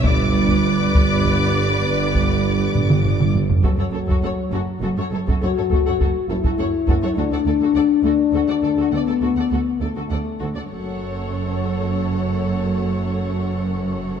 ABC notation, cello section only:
X:1
M:12/8
L:1/16
Q:3/8=68
K:F#phr
V:1 name="Cello section" clef=bass
G,,4- G,, z G,,4- G,, z G,,4- G,, z G,,4- G,, z | F,, F,, F,, F,, F,, z F,, z F,, F,, F,, F,, F,, F,, F,, F,, F,, z F,, F,, F,, z F,, F,, | D,, D,, D,, D,, D,, z D,, z D,, D,, D,, D,, D,, D,, D,, D,, D,, z D,, D,, D,, z D,, D,, | F,,24 |]